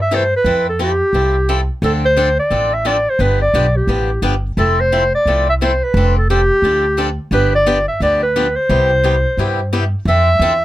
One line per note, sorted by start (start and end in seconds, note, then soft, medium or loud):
0.00 0.31 G2 medium
0.00 0.17 E5 medium
0.11 0.22 C3 medium
0.11 0.22 E3 medium
0.11 0.23 A3 medium
0.11 0.23 E4 medium
0.11 0.23 A4 medium
0.11 0.34 C5 medium
0.36 0.66 B4 medium
0.44 1.00 F2 medium
0.44 0.66 F3 soft
0.44 0.66 C4 medium
0.44 0.66 E4 medium
0.44 0.66 A4 medium
0.69 0.80 A4 medium
0.79 0.90 F3 medium
0.79 0.91 C4 medium
0.79 0.91 E4 medium
0.79 1.66 G4 medium
0.79 0.91 A4 medium
1.13 1.68 C2 medium
1.13 1.35 F3 medium
1.13 1.35 C4 medium
1.13 1.35 E4 medium
1.13 1.35 A4 medium
1.49 1.60 F3 medium
1.49 1.59 C4 medium
1.49 1.60 E4 medium
1.49 1.60 A4 medium
1.82 2.37 D2 loud
1.82 2.03 D3 medium
1.82 2.04 F3 medium
1.82 2.04 C4 medium
1.82 2.04 D4 medium
1.82 1.93 A4 medium
1.82 2.04 A4 medium
2.05 2.36 C5 medium
2.17 2.28 D3 medium
2.17 2.28 F3 medium
2.17 2.28 C4 medium
2.17 2.28 D4 medium
2.17 2.28 A4 medium
2.39 2.75 D5 medium
2.50 3.05 A1 medium
2.50 2.71 D3 medium
2.50 2.72 F3 medium
2.50 2.72 C4 medium
2.50 2.72 D4 medium
2.50 2.72 A4 medium
2.74 2.88 E5 medium
2.85 2.96 D3 medium
2.85 2.96 F3 medium
2.85 2.96 C4 medium
2.85 2.96 D4 medium
2.85 2.96 A4 medium
2.85 3.11 D5 medium
3.10 3.23 C5 medium
3.19 3.47 G1 medium
3.19 3.40 D3 medium
3.19 3.40 F3 medium
3.19 3.40 B3 medium
3.19 3.40 D4 medium
3.19 3.41 G4 medium
3.19 3.41 B4 medium
3.42 3.78 D5 medium
3.54 3.83 B1 medium
3.54 3.65 D3 medium
3.54 3.65 F3 medium
3.54 3.65 B3 medium
3.54 3.65 D4 medium
3.54 3.65 G4 medium
3.77 4.23 G4 medium
3.87 4.17 A1 medium
3.87 4.09 D3 medium
3.87 4.09 F3 medium
3.87 4.09 B3 medium
3.87 4.09 D4 medium
3.87 4.09 G4 medium
4.22 4.51 G1 medium
4.22 4.33 D3 medium
4.22 4.33 F3 medium
4.22 4.33 B3 medium
4.22 4.33 D4 medium
4.22 4.34 G4 medium
4.57 5.12 F1 medium
4.57 4.78 F3 medium
4.57 4.78 A3 medium
4.57 4.78 C4 medium
4.57 4.78 E4 medium
4.57 4.78 A4 medium
4.57 4.82 A4 medium
4.80 5.13 C5 medium
4.92 5.03 F3 medium
4.92 5.03 A3 medium
4.92 5.03 C4 medium
4.92 5.03 E4 medium
4.92 5.03 A4 medium
5.15 5.45 D5 medium
5.25 5.80 C2 medium
5.25 5.47 F3 medium
5.25 5.47 A3 medium
5.25 5.47 C4 medium
5.25 5.47 E4 medium
5.25 5.47 A4 medium
5.50 5.55 E5 medium
5.61 5.71 F3 medium
5.61 5.71 A3 medium
5.61 5.72 C4 medium
5.61 5.72 E4 medium
5.61 5.72 A4 medium
5.61 5.85 C5 medium
5.84 6.16 B4 loud
5.94 6.49 F1 loud
5.94 6.16 F3 medium
5.94 6.16 C4 medium
5.94 6.16 D4 medium
5.94 6.16 A4 medium
6.17 6.29 A4 medium
6.30 6.40 F3 medium
6.30 6.40 C4 medium
6.30 6.40 D4 medium
6.30 7.15 G4 loud
6.30 6.40 A4 medium
6.62 7.17 D2 medium
6.62 6.84 F3 medium
6.62 6.84 C4 medium
6.62 6.84 D4 medium
6.62 6.84 A4 medium
6.97 7.08 F3 medium
6.97 7.08 C4 medium
6.97 7.08 D4 medium
6.97 7.08 A4 medium
7.31 7.86 G1 medium
7.31 7.52 D3 medium
7.31 7.52 F3 medium
7.31 7.52 B3 medium
7.31 7.53 D4 medium
7.31 7.53 G4 medium
7.31 7.52 B4 loud
7.55 7.86 D5 medium
7.66 7.77 D3 medium
7.66 7.77 F3 medium
7.66 7.77 B3 medium
7.66 7.77 D4 medium
7.66 7.77 G4 medium
7.88 8.00 E5 medium
8.00 8.55 D2 medium
8.00 8.21 D3 medium
8.00 8.22 F3 medium
8.00 8.22 B3 medium
8.00 8.22 D4 medium
8.00 8.22 G4 medium
8.00 8.21 D5 loud
8.23 8.58 B4 medium
8.36 8.46 D3 medium
8.36 8.46 F3 medium
8.36 8.46 B3 medium
8.36 8.46 D4 medium
8.36 8.46 G4 medium
8.56 9.72 C5 medium
8.69 9.24 C2 medium
8.69 8.90 C3 medium
8.69 8.90 G3 medium
8.69 8.90 B3 medium
8.69 8.90 E4 medium
8.69 8.90 G4 medium
9.04 9.14 C3 medium
9.04 9.14 G3 medium
9.04 9.15 B3 medium
9.04 9.15 E4 medium
9.04 9.15 G4 medium
9.37 9.92 G2 medium
9.37 9.59 C3 medium
9.37 9.59 G3 medium
9.37 9.59 B3 medium
9.37 9.59 E4 medium
9.37 9.59 G4 medium
9.73 9.83 C3 medium
9.73 9.83 G3 medium
9.73 9.83 B3 medium
9.73 9.83 E4 medium
9.73 9.83 G4 medium
10.05 10.39 F2 medium
10.05 10.28 F3 medium
10.05 10.28 C4 medium
10.05 10.28 D4 medium
10.05 10.28 A4 medium
10.05 10.65 E5 loud
10.39 10.65 E2 medium
10.39 10.52 F3 medium
10.39 10.52 C4 medium
10.39 10.52 D4 medium
10.39 10.52 A4 loud